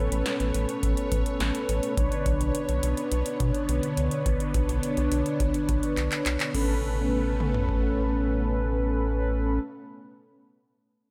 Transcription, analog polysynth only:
0.00 1.93 C#4 medium
0.00 1.93 A4 medium
0.00 1.93 B4 medium
1.97 6.51 D4 medium
1.97 6.51 B4 medium
1.97 6.51 C#5 medium
6.54 9.59 C#4 medium
6.54 9.59 A4 medium
6.54 9.59 B4 medium

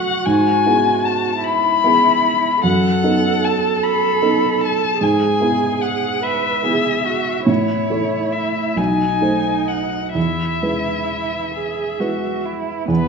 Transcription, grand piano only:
0.00 0.28 A3 soft
0.00 0.27 E4 soft
0.00 0.27 A4 soft
0.26 0.64 G#2 medium
0.66 1.81 B3 soft
0.66 1.81 E4 soft
0.66 1.81 G#4 soft
1.84 2.61 B3 soft
1.84 2.61 E4 soft
1.84 2.61 G#4 soft
2.64 3.02 F#2 medium
3.04 4.18 B3 soft
3.04 4.18 D#4 soft
3.04 4.18 A4 soft
4.22 4.98 B3 soft
4.22 4.98 D#4 soft
4.22 4.98 A4 soft
5.01 5.40 G#2 soft
5.40 6.60 B3 soft
5.40 6.60 E4 soft
5.40 6.60 G#4 soft
6.63 7.44 B3 soft
6.63 7.44 E4 soft
6.63 7.45 G#4 soft
7.47 7.89 A2 soft
7.90 8.74 A3 soft
7.90 8.74 E4 soft
7.90 8.74 C#5 soft
8.76 9.20 B1 soft
9.21 10.11 A3 soft
9.21 10.11 D#4 soft
9.21 10.12 C5 soft
10.15 10.61 E2 soft
10.62 11.97 G#3 soft
10.62 11.97 E4 soft
10.62 11.98 B4 soft
12.00 12.85 G#3 soft
12.00 12.85 E4 soft
12.00 12.85 B4 soft
12.88 13.08 E2 medium

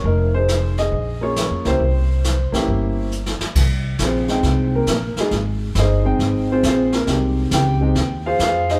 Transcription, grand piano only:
0.05 0.34 D#4 medium
0.05 0.32 A#4 medium
0.34 0.89 D#4 medium
0.34 0.78 G#4 medium
0.34 0.75 C5 medium
0.79 1.22 G#4 medium
0.79 1.23 D#5 medium
1.21 1.62 A#3 medium
1.21 1.63 C#4 medium
1.21 1.63 F4 medium
1.21 1.63 G#4 medium
1.21 1.67 C#5 medium
1.65 1.79 A#3 medium
1.65 1.79 C#4 medium
1.65 1.79 E4 medium
1.65 1.79 G4 medium
1.65 3.09 C5 medium
2.52 3.09 A#3 medium
2.52 3.09 C#4 medium
2.52 3.09 E4 medium
2.52 3.10 G4 medium
4.03 4.28 C4 medium
4.03 4.71 F4 medium
4.03 4.71 G#4 medium
4.03 4.71 C5 medium
4.29 4.85 G#3 medium
4.29 4.85 C4 medium
4.29 4.85 D#4 medium
4.29 4.86 G5 medium
4.75 4.89 A#3 medium
4.75 4.89 A#4 medium
4.91 5.18 A#3 medium
4.91 5.18 A#4 medium
5.20 5.33 G#3 medium
5.20 5.33 D#4 medium
5.20 5.33 F4 medium
5.20 5.33 G#4 medium
5.78 6.04 D#4 medium
5.78 6.47 G#4 medium
5.78 6.47 C5 medium
5.78 6.46 D#5 medium
6.04 6.61 G#3 medium
6.04 6.51 C4 medium
6.04 6.61 D#4 medium
6.04 6.61 G5 medium
6.52 6.65 C4 medium
6.52 6.65 F4 medium
6.52 6.65 G#4 medium
6.52 6.65 C5 medium
6.67 6.94 C4 medium
6.67 6.94 F4 medium
6.67 6.94 G#4 medium
6.67 6.94 C5 medium
6.94 7.09 A#3 medium
6.94 7.08 A#4 medium
7.06 7.74 G#3 medium
7.06 7.75 C4 soft
7.06 7.75 D#4 soft
7.06 7.53 G4 medium
7.54 7.81 G4 medium
7.54 8.22 G5 medium
7.81 7.94 G#3 medium
7.81 7.95 C4 medium
7.81 7.95 D#4 medium
7.81 7.95 G4 medium
8.26 8.41 F4 medium
8.26 8.41 G#4 medium
8.26 8.41 C5 medium
8.26 8.40 F5 medium
8.42 8.69 F4 medium
8.42 8.70 G#4 medium
8.42 8.69 C5 medium
8.42 8.69 F5 medium
8.71 8.80 D#4 medium
8.71 8.80 G#4 medium
8.71 8.79 C5 medium
8.71 8.79 D#5 medium

